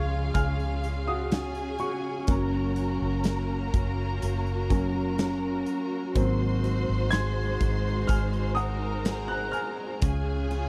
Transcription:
Already playing: C#2 C#3 F3 G#3 C#4 F4 G#4 F5 C#6 G#6
0.34 C#2 G#5 F6, kick, closed hi-hat
0.60 closed hi-hat
0.84 closed hi-hat
1.08 F#4 D#6
1.31 C#4 F4 G#4 G#5, snare, closed hi-hat
1.55 closed hi-hat
1.78 F#4 C#6, closed hi-hat
2.27 F#1 F#3 A#3 C#4 F#4 A#4 A#5, kick, closed hi-hat
2.76 F#4, closed hi-hat
3.02 F#1
3.24 A#4, snare, closed hi-hat
3.74 F#1, kick, closed hi-hat
4.22 F#1, closed hi-hat
4.47 closed hi-hat
4.70 F#3 A#3 C#4, kick, closed hi-hat
5.18 C#4 F#4 A#4, snare, closed hi-hat
5.66 closed hi-hat
6.15 G#1 G#2 F#3 G#3 A#3 C4 D#4 C5 C6, kick, closed hi-hat
6.64 F#4, closed hi-hat
6.90 G#1
7.11 G#4 C6 G#6, snare, closed hi-hat
7.60 G#1, kick, closed hi-hat
8.07 G#1 G#5 F6, kick, closed hi-hat
8.33 closed hi-hat
8.55 A#4 F#5 A#5 D#6, closed hi-hat
9.05 C4 F#4 G#4, snare, closed hi-hat
9.28 A#5 F#6
9.52 G#5 F6, closed hi-hat
10.01 C#2 C#3 F4 G#4 G#5, kick, closed hi-hat
10.05 C#4 G#4
10.51 F4, closed hi-hat

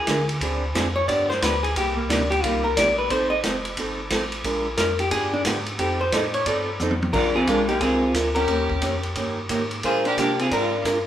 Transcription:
Already playing: G#4
0.07 D3 F3 G#3 D4 F4 A#4, kick, snare, hi-hat pedal, ride
0.29 ride
0.41 D2 D3 F3 C4 D4 G#4, kick, ride
0.75 F2 D3 F3 C4 D4 G#4, kick, snare, hi-hat pedal, ride
0.96 C#5
1.08 G2 D3 F3 B3 D4 G4 D5, kick, ride
1.30 C5, snare
1.42 D2 D3 F3 B3 D4 G4 B4, kick, snare, hi-hat pedal, ride
1.63 G#4, ride
1.76 C2 C3 G3 A#3 D#4 G4, kick, ride
1.97 A#3
2.09 D2 C3 G3 A#3 D4 D#4 G4, kick, snare, hi-hat pedal, ride
2.30 G4, ride
2.43 C2 C3 G3 A#3 D#4 F4 G4, kick, ride
2.64 A#4
2.77 A#1 C3 G3 A#3 D#4 G4 D5, kick, snare, hi-hat pedal, ride
2.98 B4
3.10 A1 F3 C4 D#4 A4 C5, kick, ride
3.30 D#5
3.44 F1 F3 C4 D#4 A4, kick, snare, hi-hat pedal, ride
3.65 ride
3.77 G1 F3 C4 D#4 A4, kick, ride
4.10 A1 F3 C4 D#4 A4, kick, snare, hi-hat pedal, ride
4.32 ride
4.44 A#1 F3 G#3 D4 F4 A#4, kick, ride
4.77 F2 F3 G#3 D4 F4 A#4, kick, snare, hi-hat pedal, ride
4.99 G4, ride
5.11 G2 D3 F3 B3 D4 G4 G#4, kick, ride
5.34 D4
5.45 G#2 D3 F3 B3 D4 G4, kick, snare, hi-hat pedal, ride
5.66 ride
5.78 F2 F3 C4 D#4 G4 A4, kick, ride
6.01 C5
6.12 A2 F3 C4 D#4 A4 D#5, kick, snare, hi-hat pedal, ride
6.34 C#5, ride
6.46 G2 F3 C4 D#4 A4 D5, kick, ride
6.80 F2 F3 C4 D#4 A4, hi-hat pedal, high tom
6.91 high tom
7.02 high tom
7.13 A#1 F3 G#3 D4 F4 A#4, kick, crash
7.34 C4 F4 G#4
7.47 B1 F3 G#3 D4 F4 A#4, kick, hi-hat pedal, ride
7.67 A#3 D#4 G4, ride
7.80 C2 F3 G#3 C4 D4 F4 G#4 A#4, kick, ride
8.14 D2 F3 G#3 D4 F4 A#4, kick, hi-hat pedal, ride
8.35 C#4 G4 A#4, ride
8.48 D#2 D#3 A#3 C#4 G4 A#4, kick, ride
8.70 kick
8.82 F2 D#3 A#3 C#4 G4 A#4, kick, hi-hat pedal, ride
9.03 ride
9.15 G2 D#3 A#3 C#4 G4 A#4, kick, ride
9.49 G#2 D#3 A#3 C#4 G4 A#4, kick, hi-hat pedal, ride
9.71 ride
9.83 A#2 F3 G#3 D4 F4 G#4 A#4 C5, kick, ride
10.05 D4 G4 A#4, ride
10.17 C3 F3 G#3 A#3 D4 F4 G4 A#4, kick, hi-hat pedal, ride
10.39 C4 F4 G#4, ride
10.51 G#2 F3 G#3 D4 F4 A#4, kick, ride
10.85 G2 F3 G#3 D4 F4 A#4, kick, hi-hat pedal, ride

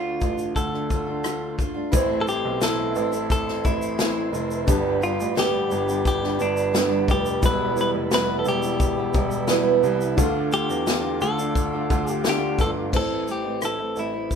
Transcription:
Already playing: D2 D3 A3 D4 F4 D5
0.21 A1 D3 A3 D4 F4, kick, shaker
0.38 shaker
0.56 D2 A4, kick, shaker
0.71 A3 D4 F4, cross-stick
0.89 D3 A3 D4 F4, kick, shaker
1.06 A3 D4 F4
1.23 D3 A3 D4 F4 D5, cross-stick, shaker
1.58 D3 A3 D4 F4, kick, shaker
1.74 A3 D4 F4
1.91 A1 A2 E3 A3 C4 E4 A4 C5 E5 C6, kick, shaker
1.95 A4
2.21 A4
2.26 E3 A3 C4 E4 G4, shaker
2.45 B1
2.61 A2 E3 A3 C4 E4 A4, snare, shaker
2.95 A1 E3 A3 C4 E4, shaker
3.12 A3 C4 E4, shaker
3.30 A4, kick, shaker
3.46 A3 C4 E4, snare
3.64 A1 E3 A3 C4 E4, kick, shaker
3.82 shaker
3.99 A2 E3 A3 C4 E4, snare, shaker
4.32 F1 E3 A3 C4 E4, shaker
4.51 shaker
4.66 G1 G2 D3 G3 B3 D4 G4 B4 D5 B5, kick, shaker
5.01 G3 B3 D4 F4 G4, shaker
5.20 A1, shaker
5.35 G2 D3 G3 B3 D4 G4, snare, shaker
5.39 G4
5.70 G1 G3 B3 D4 G4, shaker
5.87 G3 B3 D4 G4, shaker
6.05 G4, kick, shaker
6.22 G3 B3 D4 G4, snare
6.38 G1 G3 B3 D4 G4 D5, shaker
6.57 shaker
6.73 G2 D3 G3 B3 D4 G4, snare, shaker
7.08 F1 G3 B3 D4 G4, kick, shaker
7.26 shaker
7.41 E1 E2 B2 E3 G3 B3 E4 G4 B4 E5, kick, shaker
7.46 B4
7.76 E3 G3 B3 E4, shaker
7.81 B4
7.94 F1
8.11 E2 B2 E3 G3 B3 E4 B4, snare, shaker
8.39 A4
8.45 E1 E3 G3 B3 E4 G4, shaker
8.63 E3 G3 B3 E4, shaker
8.80 kick, shaker
8.97 E3 G3 B3 E4
9.14 E1 E3 G3 B3 E4, kick, shaker
9.31 shaker
9.48 E2 B2 E3 G3 B3 E4, snare, shaker
9.83 C2 E3 G3 B3 E4, shaker
10.01 shaker
10.15 D2 D3 A3 D4 F4 A4 F5 D6, kick, shaker
10.19 F4
10.51 D3 A3 D4 F4 G4, shaker
10.69 E2, shaker
10.87 D3 A3 D4 F4, snare, shaker
11.21 D2 D3 A3 D4 F4 A4, shaker
11.38 A3 D4 F4, shaker
11.55 kick, shaker
11.73 A3 D4 F4
11.90 D2 D3 A3 D4 F4, kick, shaker
12.07 shaker
12.12 G4
12.24 D3 A3 D4 F4, snare, shaker
12.29 G4
12.58 G1 D3 A3 D4 F4 A4, kick, shaker
12.90 A1 A2 E3 A3 C4 E4, kick, crash
12.95 E4 A4 C5
13.27 E3 A3 C4 E4, shaker
13.31 G4
13.44 A1 A3 C4 E4
13.62 A2 E3 A3 C4 E4 A4, cross-stick, shaker
13.79 A3 C4 E4
13.96 A1 E3 A3 C4 E4, shaker
14.13 A3 C4 E4
14.31 kick, shaker

